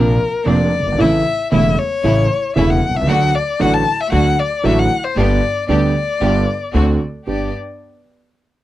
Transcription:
Already playing: grand piano A#1 A#2 C3 F3 A#3 D4, upright bass A#1, string section A#3 C4 D4, violin A#4
0.46 grand piano F1 F2 C3 F3 A#3 D4, upright bass F1, string section A#3 C4 D4, violin D5
0.79 grand piano F#1, upright bass F#1
0.86 grand piano G1, upright bass G1
0.92 grand piano G#1, upright bass G#1
0.98 grand piano A1 A2 C#3 E3 A3 E4, upright bass A1, string section A3 C#4 E4, violin E5
1.51 grand piano E1 E2 C#3 E3 A3 E4, upright bass E1, string section A3 C#4 E4, violin E5
1.78 violin C#5
2.03 upright bass A1, grand piano A1 A2 C#3 E3 A3 E4, string section A3 C#4 E4
2.56 upright bass E1, grand piano E1 E2 C#3 E3 A3 E4, string section A3 C#4 E4, violin E5
2.70 violin F#5
2.89 upright bass B1, grand piano B1
2.94 grand piano C2, upright bass C2, violin E5
3.01 grand piano C#2, upright bass C#2
3.07 grand piano D2 D3 F#3 A3 F#4, upright bass D2, string section A3 D4 F#4, violin F#5
3.35 violin D5
3.60 upright bass A1, grand piano A1 A2 D3 F#3 A3 F#4, string section A3 D4 F#4, violin F#5
3.74 violin A5
4.00 violin E5
4.11 grand piano D2 D3 F#3 A3 F#4, upright bass D2, string section A3 D4 F#4, violin F#5
4.39 violin D5
4.63 grand piano A1 A2 D3 F#3 A3 F#4, upright bass A1, string section A3 D4 F#4, violin E5
4.79 violin F#5
5.04 violin C5
5.16 upright bass G1, grand piano G1 G2 D3 G3 B3 G4, string section B3 D4 G4, violin D5
5.68 upright bass D2, grand piano D2 D3 G3 B3 G4, string section B3 D4 G4, violin D5
6.21 upright bass G1, grand piano G1 G2 D3 G3 B3 G4, string section B3 D4 G4
6.74 grand piano D2 D3 A3 C4 F#4, upright bass D2, string section C4 D4 F#4
7.27 upright bass G1, grand piano G2 B3 D4 G4, string section B3 D4 G4, violin D5

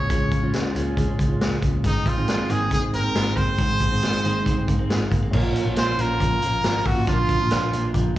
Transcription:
Already playing: clean electric guitar G#3 C#4, trumpet C#5
0.09 picked electric bass C#2, steel-string acoustic guitar C#3 G#3 C#4 F4, clean electric guitar C#3, kick, closed hi-hat
0.31 picked electric bass C#2, clean electric guitar C#4, kick, closed hi-hat
0.43 steel-string acoustic guitar C#3 G#3 C#4 F4
0.53 clean electric guitar G#3, snare, closed hi-hat
0.75 picked electric bass C#2, steel-string acoustic guitar C#3 G#3 C#4 F4, clean electric guitar C#4, closed hi-hat
0.97 clean electric guitar G#3, kick, closed hi-hat
1.07 steel-string acoustic guitar G#3 C#4 F4
1.18 picked electric bass C#2, clean electric guitar C#4, kick, closed hi-hat
1.28 steel-string acoustic guitar G#3 C#4 F4
1.41 picked electric bass C#2, clean electric guitar G#3, snare, closed hi-hat
1.62 picked electric bass C#2, clean electric guitar C#4, kick, closed hi-hat
1.84 picked electric bass G#1, clean electric guitar G#2, steel-string acoustic guitar D#3 G#3 C4 D#4, trumpet D#4, kick, closed hi-hat
2.06 picked electric bass G#1, clean electric guitar C4, trumpet F4, kick, closed hi-hat
2.16 steel-string acoustic guitar G#2 D#3 G#3 C4 D#4
2.28 clean electric guitar G#3, snare, closed hi-hat
2.48 picked electric bass G#1, steel-string acoustic guitar G#2 D#3 G#3 C4 D#4, clean electric guitar C4, trumpet G#4, closed hi-hat
2.71 clean electric guitar G#3, trumpet G#4, kick, closed hi-hat
2.81 steel-string acoustic guitar G#3 C4 D#4
2.93 picked electric bass G#1, clean electric guitar C4, trumpet A#4, closed hi-hat
3.02 steel-string acoustic guitar G#3 C4 D#4
3.15 picked electric bass G#1, clean electric guitar G#3, snare, closed hi-hat
3.36 picked electric bass G#1, clean electric guitar C4, trumpet C5, kick, closed hi-hat
3.58 picked electric bass G#1, clean electric guitar G#2, steel-string acoustic guitar D#3 G#3 C4 D#4, kick, closed hi-hat
3.80 picked electric bass G#1, clean electric guitar C4, kick, closed hi-hat
3.91 steel-string acoustic guitar G#2 D#3 G#3 C4 D#4
4.02 clean electric guitar G#3, snare, closed hi-hat
4.23 picked electric bass G#1, steel-string acoustic guitar G#2 D#3 G#3 C4 D#4, clean electric guitar C4, closed hi-hat
4.46 clean electric guitar G#3, kick, closed hi-hat
4.58 steel-string acoustic guitar G#3 C4 D#4
4.68 picked electric bass G#1, clean electric guitar A#3, kick, closed hi-hat
4.79 steel-string acoustic guitar G#3 C4 D#4, clean electric guitar C4
4.89 picked electric bass G#1, clean electric guitar G#3, snare, closed hi-hat
5.12 picked electric bass G#1, clean electric guitar A#3, kick, closed hi-hat
5.23 clean electric guitar C4
5.31 picked electric bass A#1, clean electric guitar A#2 F4, steel-string acoustic guitar A#2 F3 A#3 C#4 F4, upright piano C#4 F4 A#4, kick, crash
5.55 clean electric guitar C#4, closed hi-hat
5.66 picked electric bass A#1, steel-string acoustic guitar A#3 C#4 F4
5.76 picked electric bass A#1, clean electric guitar F4, trumpet C5, snare, closed hi-hat
5.97 picked electric bass A#1, steel-string acoustic guitar F3 A#3 C#4 F4, clean electric guitar C#4, trumpet A#4, closed hi-hat
6.20 picked electric bass A#1, clean electric guitar F3, kick, closed hi-hat
6.42 picked electric bass A#1, steel-string acoustic guitar F3 A#3 C#4 F4, clean electric guitar F4, closed hi-hat
6.63 picked electric bass G#1, steel-string acoustic guitar F3 A#3 C#4 F4, clean electric guitar C#4, snare, closed hi-hat
6.85 picked electric bass G#1, clean electric guitar A#3, trumpet F#4, kick, open hi-hat
6.96 steel-string acoustic guitar A#3 C#4 F4
7.06 picked electric bass A#1, steel-string acoustic guitar A#2 F3 A#3 D4 F4, clean electric guitar A#2 F4, upright piano D4 F4, trumpet F4, kick, closed hi-hat
7.11 upright piano A#4
7.29 clean electric guitar D4, kick, closed hi-hat
7.39 picked electric bass A#1, steel-string acoustic guitar A#3 D4 F4
7.51 picked electric bass A#1, clean electric guitar F4, snare, closed hi-hat
7.71 picked electric bass A#1, steel-string acoustic guitar F3 A#3 D4 F4, clean electric guitar D4, closed hi-hat
7.94 picked electric bass A#1, clean electric guitar F3, kick, closed hi-hat
8.15 steel-string acoustic guitar F3

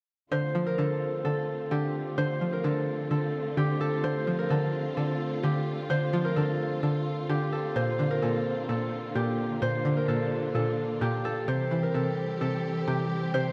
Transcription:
0.32 synth pluck D3, string section D3 A3 C4 F4, harp C5
0.55 synth pluck F3
0.66 harp A#4
0.78 synth pluck D3, harp A4
1.25 synth pluck D3, harp A4
1.71 synth pluck D3, harp G4
2.18 synth pluck D3, harp C5
2.41 synth pluck F3
2.53 harp A#4
2.64 synth pluck D3, harp A4
3.11 synth pluck D3, harp A4
3.57 synth pluck D3, harp G4
3.81 harp A4
4.04 synth pluck D3, harp C5
4.27 synth pluck F3
4.39 harp A#4
4.50 synth pluck D3, harp A4
4.97 synth pluck D3, harp A4
5.43 synth pluck D3, harp G4
5.90 synth pluck D3, harp C5
6.13 synth pluck F3
6.25 harp A#4
6.36 synth pluck D3, harp A4
6.83 synth pluck D3, harp A4
7.29 synth pluck D3, harp G4
7.53 harp A4
7.76 synth pluck A#2, string section D3 A#3 C4, harp C5
7.99 synth pluck D3
8.11 harp A#4
8.22 synth pluck A#2, harp A4
8.69 synth pluck A#2, harp A4
9.15 synth pluck A#2, harp G4
9.62 synth pluck A#2, string section D4, harp C5
9.85 synth pluck D3
9.97 harp A#4
10.08 synth pluck A#2, harp A4
10.55 synth pluck A#2, harp A4
11.01 synth pluck A#2, harp G4
11.25 harp A4
11.48 synth pluck C3, string section E3 G3 C4 G4, harp C5
11.71 synth pluck E3
11.83 harp A#4
11.94 synth pluck C3, harp A4
12.41 synth pluck C3, harp A4
12.87 synth pluck C3, harp G4
13.34 synth pluck C3, harp C5

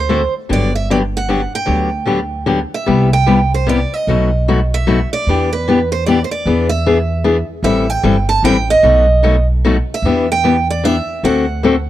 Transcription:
Already playing: upright bass D2
0.00 steel-string acoustic guitar C5
0.09 steel-string acoustic guitar D3 A3 C4 F#4 A4
0.49 upright bass G1, steel-string acoustic guitar D3 F#3 B3 D4 G4 D5
0.75 steel-string acoustic guitar E5
0.90 steel-string acoustic guitar D3 F#3 B3 D4 G4 D5
1.17 steel-string acoustic guitar F#5
1.28 steel-string acoustic guitar D3 F#3 B3 D4 G4
1.55 steel-string acoustic guitar G5
1.66 upright bass D2, steel-string acoustic guitar D3 F#3 B3 D4 G4
2.05 steel-string acoustic guitar D3 F#3 B3 D4 G4
2.46 steel-string acoustic guitar D3 F#3 B3 D4 G4
2.74 steel-string acoustic guitar E5
2.86 upright bass C2, steel-string acoustic guitar C3 G3 B3 E4 G4
3.13 steel-string acoustic guitar G5
3.26 steel-string acoustic guitar C3 G3 B3 E4 G4
3.54 steel-string acoustic guitar C5
3.67 steel-string acoustic guitar C3 G3 B3 E4 G4 D5
3.94 steel-string acoustic guitar D#5
4.07 upright bass B1, steel-string acoustic guitar B2 F#3 A3 D#4 F#4
4.48 steel-string acoustic guitar B2 F#3 A3 D#4 F#4
4.74 steel-string acoustic guitar E5
4.87 steel-string acoustic guitar B2 F#3 A3 D#4 F#4
5.13 steel-string acoustic guitar D5
5.27 upright bass E2, steel-string acoustic guitar E3 B3 D4 G4
5.53 steel-string acoustic guitar B4
5.68 steel-string acoustic guitar E3 B3 D4 G4
5.92 steel-string acoustic guitar C5
6.06 steel-string acoustic guitar E3 B3 D4 G4 D5
6.24 steel-string acoustic guitar C5
6.31 steel-string acoustic guitar D5
6.46 upright bass E2, steel-string acoustic guitar E3 B3 D4 G#4
6.69 steel-string acoustic guitar E5
6.86 steel-string acoustic guitar E3 B3 D4 G#4
7.24 steel-string acoustic guitar E3 B3 D4 G#4
7.63 upright bass A1, steel-string acoustic guitar E3 G3 C4 E4 A4 E5
7.90 steel-string acoustic guitar G5
8.03 upright bass G1, steel-string acoustic guitar E3 G3 C4 E4 A4
8.29 steel-string acoustic guitar A5
8.43 upright bass A1, steel-string acoustic guitar E3 G3 C4 E4 A4 G5
8.70 steel-string acoustic guitar D#5
8.83 upright bass B1, steel-string acoustic guitar B2 F#3 A3 D#4 F#4
9.23 steel-string acoustic guitar B2 F#3 A3 D#4 F#4
9.65 steel-string acoustic guitar B2 F#3 A3 D#4 F#4
9.94 steel-string acoustic guitar E5
10.02 upright bass E2, steel-string acoustic guitar E3 B3 D4 G4
10.32 steel-string acoustic guitar G5
10.44 steel-string acoustic guitar E3 B3 D4 G4
10.70 steel-string acoustic guitar D5
10.84 steel-string acoustic guitar E3 B3 D4 G4 E5
11.23 upright bass D2, steel-string acoustic guitar D3 A3 C4 F#4 A4 F#5
11.63 steel-string acoustic guitar D3 A3 C4 F#4 A4

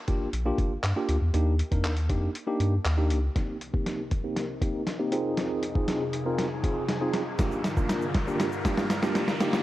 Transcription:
0.08 analog synth bass G1, tine electric piano A#3 D4 F4 G4, kick, closed hi-hat
0.33 analog synth bass A#1, closed hi-hat
0.46 tine electric piano A#3 D4 F4 G4
0.58 analog synth bass G1, kick, closed hi-hat
0.84 analog synth bass G2, clap, closed hi-hat
0.96 tine electric piano A#3 D4 F4 G4
1.09 analog synth bass D2, closed hi-hat
1.21 analog synth bass E2
1.34 analog synth bass D#2, tine electric piano A#3 D4 D#4 G4, closed hi-hat
1.59 closed hi-hat
1.72 analog synth bass F2, tine electric piano A#3 D4 D#4 A#4, kick, closed hi-hat
1.84 analog synth bass D#2, clap, closed hi-hat
1.97 closed hi-hat
2.09 analog synth bass F2, tine electric piano A#3 D4 D#4 G4, kick, closed hi-hat
2.35 closed hi-hat
2.47 tine electric piano A#3 D4 D#4 G4
2.60 analog synth bass G2, closed hi-hat
2.85 analog synth bass D#2, clap, closed hi-hat
2.98 tine electric piano A#3 D4 D#4 G4
3.10 analog synth bass C#2, closed hi-hat
3.35 ambient pad C2 C3 D#4 A#4, tine electric piano A#3 C4 D#4 G4, kick, snare, closed hi-hat, riser
3.61 closed hi-hat
3.73 tine electric piano A#3 C4 D#4 G4, kick
3.86 snare, closed hi-hat
4.11 kick, closed hi-hat
4.24 tine electric piano A#3 C4 D#4 G4
4.36 snare, closed hi-hat
4.61 tine electric piano A#3 C4 D#4 G4, kick, closed hi-hat
4.87 snare, closed hi-hat
4.99 tine electric piano A#3 C4 D#4 G4
5.12 ambient pad F2 G#4, tine electric piano C4 D#4 F4 G#4, closed hi-hat
5.37 snare, closed hi-hat
5.63 closed hi-hat
5.75 tine electric piano C4 D#4 F4 G#4, kick
5.88 snare, closed hi-hat
6.13 closed hi-hat
6.25 tine electric piano C4 D#4 F4 A#4
6.38 snare, closed hi-hat
6.63 tine electric piano C4 D#4 F4 G#4, kick, closed hi-hat
6.89 snare, closed hi-hat
7.01 tine electric piano C4 D#4 F4 G#4
7.14 snare, closed hi-hat
7.39 ambient pad G2 D3 F4 A#4, tine electric piano A#3 D4 F4 G4, kick, snare, closed hi-hat, shaker
7.52 shaker
7.64 snare, closed hi-hat, shaker
7.77 tine electric piano A#3 D4 F4 A#4, kick, shaker
7.89 snare, closed hi-hat, shaker
8.02 shaker
8.14 kick, snare, closed hi-hat
8.27 tine electric piano A#3 D4 F4 G4, shaker
8.40 snare, closed hi-hat, shaker
8.52 shaker
8.65 tine electric piano A#3 D4 F4 G4, kick, snare, closed hi-hat, shaker
8.78 snare, shaker
8.90 snare, closed hi-hat, shaker
9.03 tine electric piano A#3 D4 F4 G4, snare, shaker
9.15 snare, closed hi-hat, shaker
9.28 snare, shaker
9.40 ambient pad D#2 D#3 G4 D5, tine electric piano A#3 D4 D#4 G4, snare, closed hi-hat, shaker
9.53 snare, shaker

